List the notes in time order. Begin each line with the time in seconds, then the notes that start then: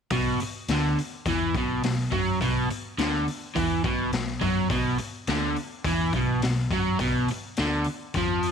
0.10 B1 B2, kick, open hi-hat
0.39 muted picked electric bass stroke, muted overdriven electric guitar stroke, open hi-hat
0.68 D2 D3, snare, open hi-hat
0.99 open hi-hat
1.26 E2 E3, kick, open hi-hat
1.55 B1 B2, kick, open hi-hat
1.83 B1 B2, snare, open hi-hat
2.12 F#2 F#3, kick, open hi-hat
2.41 B1 B2, kick, open hi-hat
2.70 muted picked electric bass stroke, muted overdriven electric guitar stroke, open hi-hat
2.98 D2 D3, snare, open hi-hat
3.28 open hi-hat
3.55 E2 E3, kick, open hi-hat
3.84 B1 B2, kick, open hi-hat
4.13 B1 B2, snare, open hi-hat
4.41 F#2 F#3, kick, open hi-hat
4.70 B1 B2, kick, open hi-hat
4.98 muted picked electric bass stroke, muted overdriven electric guitar stroke, open hi-hat
5.27 D2 D3, snare, open hi-hat
5.56 open hi-hat
5.84 E2 E3, kick, open hi-hat
6.13 B1 B2, kick, open hi-hat
6.42 B1 B2, snare, open hi-hat
6.71 F#2 F#3, kick, open hi-hat
6.99 B1 B2, kick, open hi-hat
7.28 muted picked electric bass stroke, muted overdriven electric guitar stroke, open hi-hat
7.57 D2 D3, snare, open hi-hat
7.84 open hi-hat
8.14 F2 F3, kick, open hi-hat
8.43 open hi-hat